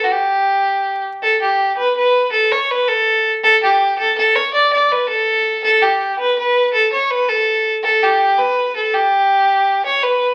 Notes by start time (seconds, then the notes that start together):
0.04 F#4
0.11 G4
1.23 A4
1.41 G4
1.78 B4
1.97 B4
2.32 A4
2.52 C#5
2.71 B4
2.88 A4
3.44 A4
3.63 G4
3.99 A4
4.18 A4
4.35 C#5
4.54 D5
4.73 D5
4.92 B4
5.09 A4
5.64 A4
5.82 G4
6.19 B4
6.39 B4
6.73 A4
6.93 C#5
7.11 B4
7.29 A4
7.84 A4
8.03 G4
8.38 B4
8.76 A4
8.94 G4
9.85 C#5
10.03 B4